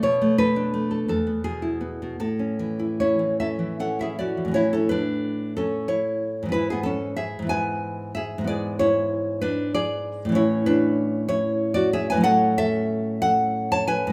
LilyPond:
\new Staff \with { instrumentName = "Nylon-string guitar" } { \time 6/8 \key a \major \tempo 4. = 62 << { cis''8 b'4 a'8 gis'4 | a'4 <e' cis''>8 <a' e''>8 <a' fis''>16 <gis' e''>16 <fis' d''>8 | <e' cis''>16 <cis' a'>16 <d' b'>4 <cis' a'>8 <e' cis''>4 | <e' b'>16 <b gis'>16 <cis' a'>8 <gis' e''>8 <b' gis''>4 <gis' e''>8 |
<gis' d''>8 <e' cis''>4 <d' b'>8 <gis' d''>4 | <e' cis''>8 <d' b'>4 <e' cis''>8. <fis' d''>16 <gis' e''>16 <b' gis''>16 | \key fis \dorian <a' fis''>8 <a' e''>4 <a' fis''>8. <cis'' a''>16 <b' gis''>8 | } \\ { b,16 a16 a'16 d'16 a16 a'16 e,16 b16 b,16 e'16 b16 b,16 | a,16 cis'16 e16 e'16 cis'16 e16 cis'16 e16 cis'16 e'16 cis'16 e16 | <a, e cis'>2. | <gis, e b>4. <gis, e b>4. |
<gis, e b>2. | <a, e cis'>2. | <a, fis cis'>2. | } >> }